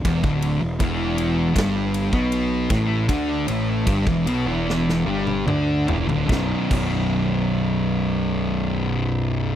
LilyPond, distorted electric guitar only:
\new Staff \with { instrumentName = "Distorted electric guitar" } { \clef bass \time 4/4 \key b \minor \tempo 4 = 75 <e, e>16 <d, d>8 e,16 <e, e>4 <g, g>8. <b, b>8. <a, a>8 | <d d'>8 <a, a>8 <g, g>16 <e, e>16 <b, b>16 <e, e>8. <g, g>8 <d d'>8 <e, e>16 <d, d>16 | <b,, fis, b,>16 r16 <b,, fis, b,>2.~ <b,, fis, b,>8 | }